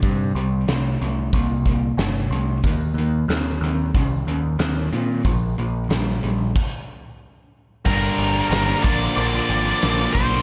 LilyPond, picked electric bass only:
\new Staff \with { instrumentName = "Picked electric bass" } { \clef bass \time 4/4 \key c \minor \tempo 4 = 92 g,8 c,8 c,8 c,8 c,4 g,,8 c,8 | ees,8 ees,8 ees,8 ees,8 c,8 ees,8 ees,8 bes,8 | bes,,8 bes,,8 bes,,8 bes,,8 r2 | g,,8 g,,8 g,,8 bes,,8 bes,,8 aes,,8 bes,,8 b,,8 | }